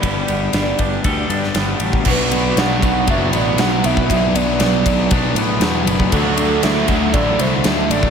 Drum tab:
CC |----------------|x---------------|----------------|----------------|
RD |x-x-x-x-x-x-x-x-|--x-x-x-x-x-x-x-|x-x-x-x-x-x-x-x-|x-x-x-x-x-x-x-x-|
SD |----o------oo---|----o-------o---|----o-------o---|----o-------o---|
BD |o-----o-o------o|o-----o-o------o|o-----o-o------o|o-----o-o------o|